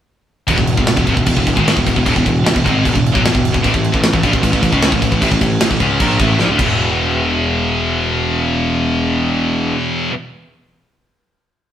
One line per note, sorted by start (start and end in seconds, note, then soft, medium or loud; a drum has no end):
0.47 0.57 E1 medium
0.47 0.56 E2 loud
0.47 0.57 B2 loud
0.47 kick loud
0.47 crash medium
0.58 0.76 E1 medium
0.58 0.73 E2 medium
0.58 0.74 B2 medium
0.58 kick medium
0.67 crash medium
0.77 0.96 E1 medium
0.77 0.93 E2 medium
0.77 0.93 B2 medium
0.77 kick medium
0.87 snare loud
0.87 crash medium
0.96 1.06 E1 medium
0.96 1.06 E2 medium
0.96 1.07 B2 medium
0.96 kick medium
1.06 1.16 F1 loud
1.06 1.15 F2 medium
1.06 1.16 C3 loud
1.06 kick medium
1.06 crash medium
1.16 1.26 E1 medium
1.16 1.25 E2 medium
1.16 1.26 B2 medium
1.16 kick medium
1.26 1.36 E1 medium
1.26 1.35 E2 medium
1.26 1.36 B2 medium
1.26 kick medium
1.26 crash medium
1.36 1.46 E1 medium
1.36 1.45 E2 medium
1.36 1.46 B2 medium
1.36 kick medium
1.46 1.56 E1 medium
1.46 1.55 E2 medium
1.46 1.55 B2 medium
1.46 kick medium
1.46 crash medium
1.55 1.75 G#1 medium
1.55 1.75 G#2 medium
1.55 1.75 D#3 medium
1.55 1.76 G#3 loud
1.55 kick medium
1.68 snare loud
1.68 crash medium
1.77 1.86 E1 medium
1.77 1.86 E2 medium
1.77 1.86 B2 medium
1.77 kick medium
1.87 1.96 E1 medium
1.87 1.95 E2 medium
1.87 1.95 B2 medium
1.87 kick medium
1.87 crash medium
1.96 2.06 E1 medium
1.96 2.04 E2 medium
1.96 2.04 B2 medium
1.96 kick medium
2.05 2.15 E1 medium
2.05 2.15 E2 medium
2.05 2.15 B2 loud
2.05 kick loud
2.05 crash medium
2.16 2.25 E1 medium
2.16 2.24 E2 medium
2.16 2.25 B2 medium
2.16 kick medium
2.25 2.45 E1 medium
2.25 2.41 E2 medium
2.25 2.42 B2 medium
2.25 kick medium
2.25 crash medium
2.44 2.55 E1 medium
2.44 2.53 E2 medium
2.44 2.53 B2 medium
2.44 snare loud
2.44 crash medium
2.54 2.65 E1 medium
2.54 2.64 E2 medium
2.54 2.65 B2 medium
2.54 kick medium
2.64 2.84 G#1 loud
2.64 2.84 G#2 medium
2.64 2.84 D#3 medium
2.64 2.84 G#3 loud
2.64 kick medium
2.64 crash medium
2.84 2.94 E1 medium
2.84 2.92 E2 medium
2.84 2.93 B2 medium
2.84 kick medium
2.84 crash medium
2.94 3.14 E1 medium
2.94 3.10 E2 medium
2.94 3.10 B2 medium
2.94 kick medium
3.06 crash medium
3.14 3.23 B1 medium
3.14 3.23 B2 medium
3.14 3.24 F#3 medium
3.14 kick loud
3.23 3.33 E1 medium
3.23 3.32 E2 medium
3.23 3.32 B2 medium
3.23 snare loud
3.23 crash medium
3.33 3.53 E1 medium
3.33 3.50 E2 medium
3.33 3.50 B2 medium
3.33 kick medium
3.45 crash medium
3.53 3.63 E1 medium
3.53 3.64 E2 medium
3.53 3.63 B2 medium
3.53 kick medium
3.63 3.73 A1 loud
3.63 3.72 A2 loud
3.63 3.72 E3 loud
3.63 kick medium
3.63 crash medium
3.73 3.92 A1 medium
3.73 3.89 A2 medium
3.73 3.89 E3 medium
3.73 kick medium
3.84 crash medium
3.92 4.12 A1 medium
3.92 4.09 A2 medium
3.92 4.09 E3 medium
3.92 kick medium
4.03 snare loud
4.03 crash medium
4.12 4.22 A1 medium
4.12 4.23 A2 medium
4.12 4.23 E3 medium
4.12 kick medium
4.23 4.33 A#1 loud
4.23 4.33 A#2 medium
4.23 4.33 F3 loud
4.23 kick medium
4.23 crash medium
4.33 4.42 A1 medium
4.33 4.41 A2 medium
4.33 4.42 E3 medium
4.33 kick medium
4.43 4.52 A1 medium
4.43 4.51 A2 medium
4.43 4.51 E3 medium
4.43 kick medium
4.43 crash medium
4.52 4.62 A1 medium
4.52 4.61 A2 medium
4.52 4.61 E3 medium
4.52 kick medium
4.62 4.72 A1 medium
4.62 4.72 A2 medium
4.62 4.72 E3 medium
4.62 kick medium
4.62 crash medium
4.72 4.91 C#2 loud
4.72 4.91 C#3 medium
4.72 4.92 G#3 medium
4.72 4.92 C#4 loud
4.72 kick medium
4.82 snare loud
4.82 crash medium
4.92 5.01 A1 medium
4.92 5.01 A2 medium
4.92 5.02 E3 medium
4.92 kick medium
5.02 5.11 A1 medium
5.02 5.10 A2 medium
5.02 5.10 E3 medium
5.02 kick medium
5.02 crash medium
5.11 5.21 A1 medium
5.11 5.20 A2 medium
5.11 5.21 E3 medium
5.11 kick medium
5.21 5.31 A1 loud
5.21 5.29 A2 loud
5.21 5.30 E3 loud
5.21 kick medium
5.21 crash medium
5.30 5.41 A1 medium
5.30 5.40 A2 medium
5.30 5.40 E3 medium
5.30 kick medium
5.41 5.60 A1 medium
5.41 5.57 A2 medium
5.41 5.57 E3 medium
5.41 kick medium
5.41 crash medium
5.61 5.70 A1 medium
5.61 5.69 A2 medium
5.61 5.70 E3 medium
5.61 snare loud
5.61 crash medium
5.70 5.80 A1 medium
5.70 5.79 A2 medium
5.70 5.80 E3 medium
5.70 kick medium
5.80 5.99 C#2 loud
5.80 5.99 C#3 medium
5.80 5.99 G#3 loud
5.80 6.00 C#4 loud
5.80 kick medium
5.80 crash medium
6.00 6.18 A#1 loud
6.00 6.19 A#2 loud
6.00 6.19 F3 medium
6.00 6.19 A#3 loud
6.00 kick loud
6.00 crash medium
6.19 6.38 A1 loud
6.19 6.39 A2 medium
6.19 6.39 E3 loud
6.19 6.39 A3 loud
6.19 kick loud
6.19 crash medium
6.39 6.49 A#1 medium
6.39 6.49 A#2 medium
6.39 6.49 F3 medium
6.39 snare medium
6.49 6.58 D2 medium
6.49 6.59 D3 medium
6.49 6.59 A3 medium
6.59 9.71 E1 medium
6.59 10.09 E2 loud
6.59 10.12 B2 loud
6.59 kick loud
6.59 crash medium
6.64 10.14 E3 loud